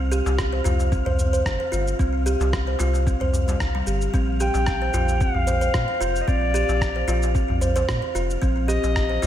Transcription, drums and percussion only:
0.12 darbuka tek, cabasa
0.26 darbuka tek, cabasa
0.39 kick, cross-stick, cabasa
0.53 darbuka ka
0.65 darbuka tek, darbuka dum, cabasa
0.79 darbuka ka, cabasa
0.92 kick, cabasa
1.06 darbuka dum
1.19 darbuka dum, cabasa
1.34 cabasa
1.46 kick, cross-stick, cabasa
1.73 cabasa
1.87 cabasa
1.99 kick, cabasa
2.26 cabasa
2.40 darbuka ka, darbuka tek, cabasa
2.53 kick, cross-stick, cabasa
2.67 darbuka ka
2.79 darbuka tek, cabasa
2.94 darbuka ka, cabasa
3.07 kick, cabasa
3.21 darbuka dum
3.33 darbuka dum, cabasa
3.48 darbuka tek, cabasa
3.60 kick, cross-stick, cabasa
3.74 darbuka ka
3.87 cabasa
4.01 cabasa
4.14 kick, cabasa
4.40 darbuka tek, cabasa
4.54 darbuka tek, cabasa
4.66 kick, cross-stick, cabasa
4.82 darbuka ka
4.94 darbuka tek, darbuka dum, cabasa
5.08 darbuka ka, cabasa
5.21 kick, cabasa
5.34 darbuka dum
5.47 darbuka dum, cabasa
5.62 cabasa
5.74 kick, cross-stick, cabasa
6.01 cabasa
6.15 cabasa
6.28 kick, cabasa
6.55 cabasa
6.69 darbuka ka, darbuka tek, cabasa
6.81 kick, cross-stick, cabasa
6.96 darbuka ka
7.08 darbuka tek, cabasa
7.22 darbuka ka, cabasa
7.35 kick, cabasa
7.50 darbuka dum
7.62 darbuka dum, cabasa
7.76 darbuka tek, cabasa
7.89 kick, cross-stick, cabasa
8.15 cabasa
8.30 cabasa
8.42 kick, cabasa
8.69 darbuka tek, cabasa
8.84 darbuka tek, cabasa
8.96 kick, cross-stick, cabasa
9.11 darbuka ka
9.23 darbuka tek, darbuka dum, cabasa

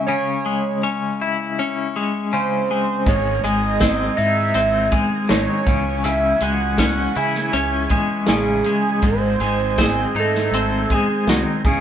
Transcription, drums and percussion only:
3.07 kick, closed hi-hat
3.44 closed hi-hat
3.80 kick, snare, closed hi-hat
4.18 closed hi-hat
4.54 closed hi-hat
4.92 kick, closed hi-hat
5.29 snare, closed hi-hat
5.66 kick, closed hi-hat
6.04 closed hi-hat
6.40 closed hi-hat
6.78 kick, snare, closed hi-hat
7.15 closed hi-hat
7.34 snare
7.53 closed hi-hat
7.89 kick, closed hi-hat
8.26 snare, closed hi-hat
8.64 closed hi-hat
9.02 kick, closed hi-hat
9.40 closed hi-hat
9.78 kick, snare, closed hi-hat
10.16 closed hi-hat
10.34 snare
10.54 closed hi-hat
10.90 kick, closed hi-hat
11.27 snare, closed hi-hat
11.65 kick, closed hi-hat

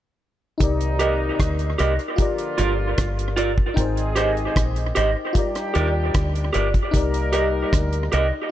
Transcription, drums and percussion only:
0.60 kick, closed hi-hat
0.81 closed hi-hat
1.00 closed hi-hat
1.40 kick, cross-stick, closed hi-hat
1.59 closed hi-hat
1.79 closed hi-hat
1.99 closed hi-hat
2.18 kick, closed hi-hat
2.38 closed hi-hat
2.58 closed hi-hat
2.98 kick, cross-stick, closed hi-hat
3.19 closed hi-hat
3.37 closed hi-hat
3.58 kick
3.77 kick, closed hi-hat
3.97 closed hi-hat
4.16 cross-stick, closed hi-hat
4.37 closed hi-hat
4.56 kick, cross-stick, closed hi-hat
4.76 closed hi-hat
4.96 closed hi-hat
5.35 kick, closed hi-hat
5.55 cross-stick, closed hi-hat
5.75 closed hi-hat
6.14 kick, cross-stick, closed hi-hat
6.35 closed hi-hat
6.54 closed hi-hat
6.74 kick, closed hi-hat
6.94 kick, closed hi-hat
7.14 closed hi-hat
7.33 closed hi-hat
7.73 kick, cross-stick, closed hi-hat
7.93 closed hi-hat
8.12 closed hi-hat

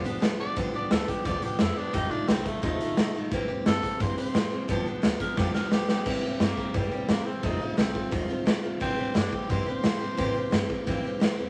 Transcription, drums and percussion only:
0.05 closed hi-hat
0.22 snare, closed hi-hat
0.56 kick, closed hi-hat
0.91 snare, closed hi-hat
1.08 kick, closed hi-hat
1.25 kick, closed hi-hat
1.42 closed hi-hat
1.59 snare, closed hi-hat
1.93 kick, closed hi-hat
2.28 snare, closed hi-hat
2.46 kick, closed hi-hat
2.63 kick, closed hi-hat
2.81 closed hi-hat
2.97 snare, closed hi-hat
3.31 kick, closed hi-hat
3.66 snare, closed hi-hat
3.83 kick, closed hi-hat
4.00 kick, closed hi-hat
4.18 closed hi-hat
4.35 snare, closed hi-hat
4.69 kick, closed hi-hat
5.03 snare, closed hi-hat
5.20 kick, closed hi-hat
5.37 kick, snare
5.55 snare
5.71 snare
5.88 snare
6.05 kick, crash
6.40 snare, open hi-hat
6.57 kick
6.74 kick, open hi-hat
7.09 snare, open hi-hat
7.43 kick, open hi-hat
7.78 snare, open hi-hat
7.95 kick
8.12 kick, open hi-hat
8.47 snare, open hi-hat
8.81 kick, open hi-hat
9.15 snare, open hi-hat
9.33 kick
9.50 kick, open hi-hat
9.84 snare, open hi-hat
10.18 kick, open hi-hat
10.52 snare, open hi-hat
10.70 kick
10.87 kick, open hi-hat
11.21 snare, open hi-hat

